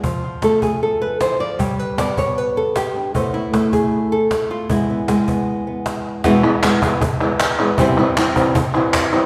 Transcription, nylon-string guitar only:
0.03 F3
0.24 F4
0.43 A3 A4
0.63 G#4
0.83 A4
1.02 B4
1.20 E3 C5
1.40 F3 D5
1.59 G3 C#5
1.79 B4
1.98 B3 D5
2.18 C#5
2.38 B4
2.57 A4
2.77 G4
2.96 D4
3.14 A2 A3 B3 C5
3.34 E4
3.54 A3
3.73 G#4
4.12 A4
4.32 A3
4.51 F4
4.70 E2 G#3 B3 E4
4.90 B3
5.08 G#3
5.28 B3
5.67 B3
6.24 E2 B2 E3 G#3 B3 E4
6.43 E3 G#3 B3 E4
6.63 E3 G#3 B3 E4
6.82 E3 G#3 B3 E4
7.02 muted nylon-string guitar stroke
7.21 E3 G#3 B3 E4
7.60 E3 G#3 B3 E4
7.79 E2 C3 E3 G3 C4 E4
7.99 E3 G3 C4 E4
8.17 E3 G3 C4 E4
8.36 E3 G3 C4 E4
8.56 muted nylon-string guitar stroke
8.75 E3 G3 C4 E4
9.13 E3 G3 C4 E4

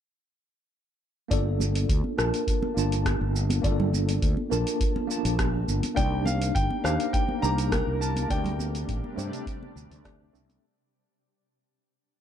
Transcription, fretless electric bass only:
1.31 G1
1.89 D2
2.18 A#1
2.77 G1
3.21 G1
3.64 G1
4.22 D2
4.52 A#1
5.25 A#1
5.68 G1
5.97 C2
6.55 G1
6.84 D#2
7.43 C2
7.87 C2
8.30 D2
8.88 A1
9.17 G2
9.76 D2
9.91 D2
10.34 C2

